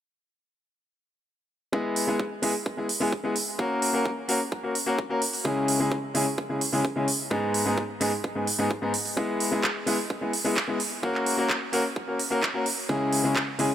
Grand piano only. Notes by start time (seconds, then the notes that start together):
1.72 G#3 B3 E4 G#4
2.07 G#3 B3 E4 G#4
2.42 G#3 B3 E4 G#4
2.77 G#3 B3 E4 G#4
3.00 G#3 B3 E4 G#4
3.23 G#3 B3 E4 G#4
3.58 A#3 C#4 F#4 A#4
3.93 A#3 C#4 F#4 A#4
4.28 A#3 C#4 F#4 A#4
4.63 A#3 C#4 F#4 A#4
4.86 A#3 C#4 F#4 A#4
5.10 A#3 C#4 F#4 A#4
5.44 C#3 G#3 C#4 E4 G#4
5.79 C#3 G#3 C#4 E4 G#4
6.14 C#3 G#3 C#4 E4 G#4
6.49 C#3 G#3 C#4 E4 G#4
6.72 C#3 G#3 C#4 E4 G#4
6.96 C#3 G#3 C#4 E4 G#4
7.30 G#2 G#3 B3 D#4 G#4
7.65 G#2 G#3 B3 D#4 G#4
8.00 G#2 G#3 B3 D#4 G#4
8.35 G#2 G#3 B3 D#4 G#4
8.58 G#2 G#3 B3 D#4 G#4
8.82 G#2 G#3 B3 D#4 G#4
9.17 G#3 B3 E4 G#4
9.51 G#3 B3 E4 G#4
9.86 G#3 B3 E4 G#4
10.21 G#3 B3 E4 G#4
10.44 G#3 B3 E4 G#4
10.68 G#3 B3 E4 G#4
11.03 A#3 C#4 F#4 A#4
11.37 A#3 C#4 F#4 A#4
11.72 A#3 C#4 F#4 A#4
12.07 A#3 C#4 F#4 A#4
12.31 A#3 C#4 F#4 A#4
12.54 A#3 C#4 F#4 A#4
12.89 C#3 G#3 C#4 E4 G#4
13.24 C#3 G#3 C#4 E4 G#4
13.58 C#3 G#3 C#4 E4 G#4